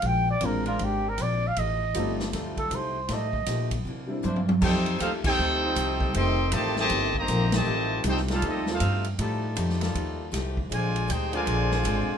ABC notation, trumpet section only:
X:1
M:4/4
L:1/8
Q:"Swing" 1/4=158
K:Fmix
V:1 name="Trumpet section"
z8 | z8 | z8 | [K:Bblyd] [_EAcg]2 [EAcf] [EAcg]4- [EAcg] |
[A_egc']2 [Gcea] [Gcea]2 [Gceb]2 [Gcea]- | [Gc_ea]2 [_EAcg] [EAcf] [CGAe] [EAcf]2 z | z8 | [Fcd_a]2 [_E_Acg] [Fcda]4- [Fcda] |]